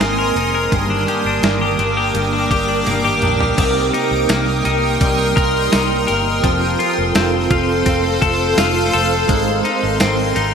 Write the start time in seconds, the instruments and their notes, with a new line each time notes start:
Already playing: clean electric guitar G#3 D#4 A#4, ambient pad A#4 G#5 C6 D#6
0.00 fingered electric bass G#1, clean electric guitar G#3 C4 D#4 A#4, snare, closed hi-hat
0.18 clean electric guitar A#4
0.35 fingered electric bass F1, clean electric guitar D#4 A#4, closed hi-hat
0.40 clean electric guitar C4
0.55 clean electric guitar A#4
0.71 fingered electric bass G1, clean electric guitar G2 D#3 G3 A#3 D4, ambient pad A#4 G5 D6, kick, closed hi-hat
0.75 clean electric guitar G4
0.90 clean electric guitar D4
1.06 clean electric guitar D4 G4, closed hi-hat
1.10 clean electric guitar G3 A#3
1.25 fingered electric bass G1, clean electric guitar D4
1.42 fingered electric bass G1, clean electric guitar G2 D#3 G3 A#3 D4 G4, snare, closed hi-hat
1.61 clean electric guitar G4
1.78 fingered electric bass G1, clean electric guitar D4 G4, closed hi-hat
1.82 clean electric guitar G3 A#3
1.97 clean electric guitar G4
2.14 fingered electric bass G1, clean electric guitar G2 G3 A#3, closed hi-hat
2.18 clean electric guitar D4 G4
2.33 clean electric guitar D4
2.51 fingered electric bass G1, clean electric guitar A#3 D4 G4, kick, closed hi-hat
2.56 clean electric guitar G3
2.69 clean electric guitar D4
2.86 fingered electric bass G1, clean electric guitar G2 D#3 G3 A#3 D4 G4, closed hi-hat, high tom
3.04 clean electric guitar G4, mid tom
3.22 fingered electric bass A#1, clean electric guitar D4 G4, closed hi-hat, mid tom
3.26 clean electric guitar G3 A#3
3.40 clean electric guitar G4, floor tom
3.57 fingered electric bass C2, clean electric guitar C3 G3 A#3 D#4, ambient pad A#4 G5 C6 D#6, kick, closed hi-hat, crash
3.62 clean electric guitar G4
3.94 clean electric guitar D#4 G4, closed hi-hat
3.99 clean electric guitar A#3
4.11 fingered electric bass C2
4.29 fingered electric bass C2, clean electric guitar G3 A#3, snare, closed hi-hat, tambourine
4.33 clean electric guitar D#4 G4
4.64 fingered electric bass C2, clean electric guitar D#4 G4, closed hi-hat
4.69 clean electric guitar A#3
5.00 fingered electric bass C2, clean electric guitar C3 G3 A#3 D#4 G4, kick, closed hi-hat
5.35 fingered electric bass C2, clean electric guitar D#4 G4 A#4, kick, closed hi-hat
5.41 clean electric guitar A#3
5.71 fingered electric bass C2, clean electric guitar G3 A#3 D#4, snare, closed hi-hat, tambourine
5.77 clean electric guitar G4
6.07 fingered electric bass G1, clean electric guitar D#4 G4 A#4, closed hi-hat
6.12 clean electric guitar A#3
6.43 fingered electric bass F1, clean electric guitar F3 C4 F4, ambient pad A4 C5 F5, kick, closed hi-hat
6.47 clean electric guitar A4
6.78 clean electric guitar F4 A4, closed hi-hat
6.84 clean electric guitar C4
6.98 fingered electric bass F1
7.15 fingered electric bass F1, clean electric guitar F3 C4 F4, snare, closed hi-hat, tambourine
7.20 clean electric guitar A4
7.50 fingered electric bass F1, clean electric guitar F4 A4, kick, closed hi-hat
7.56 clean electric guitar C4
7.86 fingered electric bass F1, clean electric guitar F3 C4 F4 A4, kick, closed hi-hat
8.21 fingered electric bass F1, clean electric guitar F4 A4, kick, closed hi-hat
8.27 clean electric guitar C4
8.56 fingered electric bass F1, clean electric guitar F3 C4 F4, snare, closed hi-hat, tambourine
8.61 clean electric guitar A4
8.92 fingered electric bass F1, clean electric guitar F4 A4, closed hi-hat
8.97 clean electric guitar C4
9.27 fingered electric bass G#1, clean electric guitar G#3 C4 D#4, ambient pad A#4 D#5 G#5, kick, closed hi-hat
9.32 clean electric guitar A#4
9.63 clean electric guitar D#4 A#4, closed hi-hat
9.68 clean electric guitar C4
9.83 fingered electric bass G#1
9.99 fingered electric bass G#1, clean electric guitar G#3 C4 D#4, snare, closed hi-hat, tambourine
10.05 clean electric guitar A#4
10.34 fingered electric bass G#1, clean electric guitar D#4 A#4, closed hi-hat
10.40 clean electric guitar C4